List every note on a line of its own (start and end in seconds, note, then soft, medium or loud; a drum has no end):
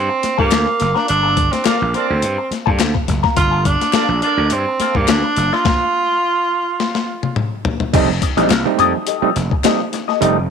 0.00 0.39 C4 medium
0.09 muted clean electric guitar stroke medium
0.23 muted slap bass stroke soft
0.23 snare soft
0.23 closed hi-hat medium
0.38 0.50 G2 loud
0.38 0.51 A#3 medium
0.38 0.98 A#3 medium
0.38 0.51 F4 medium
0.38 0.50 A4 loud
0.38 kick medium
0.51 0.65 D2 loud
0.51 muted clean electric guitar stroke soft
0.51 snare loud
0.51 clap medium
0.51 closed hi-hat loud
0.66 muted clean electric guitar stroke soft
0.80 0.94 F#1 medium
0.80 snare soft
0.80 closed hi-hat medium
0.95 1.07 A#3 medium
0.95 1.08 D4 medium
0.95 1.08 F4 medium
0.95 1.07 A#4 medium
0.95 snare soft
1.08 1.47 G1 medium
1.08 1.53 D4 loud
1.08 muted clean electric guitar stroke soft
1.08 closed hi-hat loud
1.23 1.36 A#3 medium
1.23 1.36 F4 medium
1.23 1.36 A4 medium
1.37 muted clean electric guitar stroke soft
1.37 kick loud
1.37 closed hi-hat medium
1.52 1.66 C4 medium
1.52 muted clean electric guitar stroke soft
1.52 snare soft
1.52 closed hi-hat medium
1.65 1.79 A#3 medium
1.65 1.96 A#3 medium
1.65 1.76 D4 medium
1.65 1.80 F4 loud
1.65 1.80 A4 medium
1.65 1.76 A#4 medium
1.65 1.76 D5 loud
1.65 muted slap bass stroke soft
1.65 snare loud
1.65 clap loud
1.65 closed hi-hat medium
1.81 1.93 A#1 medium
1.81 muted clean electric guitar stroke soft
1.94 2.05 A#3 medium
1.94 2.52 C4 medium
1.94 2.13 D4 medium
1.94 2.06 F4 medium
1.94 2.06 A4 medium
1.94 2.13 A#4 medium
1.94 2.13 D5 loud
1.94 closed hi-hat medium
2.10 2.22 D2 medium
2.22 2.36 G2 loud
2.22 muted clean electric guitar stroke medium
2.22 closed hi-hat loud
2.38 muted clean electric guitar stroke medium
2.51 muted slap bass stroke soft
2.51 snare soft
2.51 closed hi-hat medium
2.66 2.79 G2 loud
2.66 2.78 A#3 medium
2.66 2.78 F4 medium
2.66 2.78 A4 loud
2.66 kick medium
2.79 2.93 D2 medium
2.79 muted clean electric guitar stroke soft
2.79 snare loud
2.79 clap loud
2.79 closed hi-hat loud
2.94 muted clean electric guitar stroke soft
2.94 kick medium
3.08 3.22 F#1 medium
3.08 kick medium
3.08 snare soft
3.08 closed hi-hat medium
3.23 3.36 A#3 medium
3.23 3.36 F4 medium
3.23 3.36 A#4 medium
3.23 kick medium
3.23 snare soft
3.37 3.75 G1 loud
3.37 3.67 F4 loud
3.37 muted clean electric guitar stroke soft
3.37 kick loud
3.37 closed hi-hat loud
3.51 3.65 A#3 medium
3.51 3.65 F4 medium
3.51 3.64 A4 medium
3.65 4.22 D4 medium
3.65 muted clean electric guitar stroke soft
3.65 kick medium
3.65 closed hi-hat medium
3.81 muted clean electric guitar stroke soft
3.81 snare soft
3.81 closed hi-hat medium
3.93 4.08 A#3 medium
3.93 4.04 D4 medium
3.93 4.08 F4 medium
3.93 4.09 A4 medium
3.93 4.04 A#4 medium
3.93 4.05 D5 medium
3.93 muted slap bass stroke soft
3.93 snare loud
3.93 clap loud
3.93 closed hi-hat medium
4.09 4.21 A#1 medium
4.09 muted clean electric guitar stroke soft
4.22 4.34 A#3 medium
4.22 4.54 D4 medium
4.22 4.60 D4 loud
4.22 4.34 F4 medium
4.22 4.34 A4 medium
4.22 4.60 A#4 loud
4.22 4.60 D5 loud
4.22 closed hi-hat medium
4.37 4.49 D2 medium
4.37 muted clean electric guitar stroke soft
4.50 4.64 G2 medium
4.50 4.98 C4 medium
4.50 muted clean electric guitar stroke soft
4.50 closed hi-hat loud
4.69 muted clean electric guitar stroke medium
4.80 4.94 A#3 medium
4.80 4.94 F4 loud
4.80 4.95 A4 medium
4.80 muted slap bass stroke medium
4.80 snare soft
4.80 closed hi-hat medium
4.95 5.07 G2 loud
4.95 5.11 A#3 loud
4.95 muted clean electric guitar stroke medium
4.95 kick medium
5.08 5.22 D2 medium
5.08 5.55 D4 loud
5.08 muted clean electric guitar stroke soft
5.08 snare loud
5.08 clap loud
5.08 closed hi-hat loud
5.24 muted clean electric guitar stroke medium
5.36 5.50 F#1 medium
5.36 snare soft
5.36 closed hi-hat medium
5.52 5.72 A#3 medium
5.52 5.72 F4 medium
5.52 7.37 F4 loud
5.52 5.72 A#4 medium
5.52 snare soft
5.65 kick loud
5.65 snare loud
6.80 snare medium
6.95 snare medium
7.23 high tom medium
7.36 mid tom medium
7.65 floor tom loud
7.80 floor tom medium
7.93 8.19 F1 loud
7.93 8.10 G3 loud
7.93 8.10 A3 loud
7.93 8.10 C4 loud
7.93 8.10 D#4 loud
7.93 8.08 G4 medium
7.93 8.08 A4 medium
7.93 8.08 D#5 medium
7.93 kick loud
7.93 closed hi-hat loud
7.93 crash medium
8.09 muted clean electric guitar stroke medium
8.22 8.29 C4 soft
8.22 8.29 D#4 soft
8.22 muted clean electric guitar stroke soft
8.22 kick medium
8.22 closed hi-hat medium
8.37 8.49 A1 medium
8.37 8.52 G3 medium
8.37 8.52 A3 medium
8.37 8.52 C4 medium
8.37 8.52 D#4 loud
8.37 8.47 G4 medium
8.37 8.47 A4 medium
8.37 8.47 D#5 medium
8.37 snare soft
8.37 closed hi-hat medium
8.50 8.63 C2 medium
8.50 snare loud
8.50 clap loud
8.50 closed hi-hat medium
8.65 8.97 G3 medium
8.65 8.97 A3 medium
8.65 8.97 C4 medium
8.65 8.97 D#4 loud
8.65 muted clean electric guitar stroke soft
8.78 8.92 F2 medium
8.78 8.92 G4 medium
8.78 8.93 A4 medium
8.78 8.93 D#5 loud
8.78 closed hi-hat medium
8.94 muted clean electric guitar stroke soft
9.07 9.34 G4 medium
9.07 9.34 A4 medium
9.07 9.34 D#5 medium
9.07 closed hi-hat loud
9.22 9.30 G3 loud
9.22 9.30 A3 loud
9.22 9.30 C4 loud
9.22 9.30 D#4 loud
9.22 muted slap bass stroke soft
9.36 9.49 F1 medium
9.36 9.43 C4 soft
9.36 9.43 D#4 soft
9.36 muted clean electric guitar stroke soft
9.36 snare soft
9.36 closed hi-hat medium
9.51 muted clean electric guitar stroke medium
9.51 kick medium
9.64 9.81 G3 medium
9.64 9.81 A3 medium
9.64 9.81 C4 medium
9.64 9.81 D#4 medium
9.64 9.78 G4 medium
9.64 9.78 A4 loud
9.64 9.79 D#5 loud
9.64 snare loud
9.64 clap loud
9.64 closed hi-hat loud
9.93 10.00 C4 soft
9.93 10.00 D#4 soft
9.93 muted clean electric guitar stroke soft
9.93 snare soft
9.93 closed hi-hat medium
10.08 10.18 G4 soft
10.08 10.18 A4 medium
10.08 10.17 D#5 medium
10.08 snare soft
10.21 10.46 F1 loud
10.21 10.38 G3 loud
10.21 10.38 A3 loud
10.21 10.38 C4 medium
10.21 10.38 D#4 loud
10.21 10.35 G4 medium
10.21 10.36 A4 medium
10.21 10.36 D#5 medium
10.21 closed hi-hat loud
10.38 muted clean electric guitar stroke soft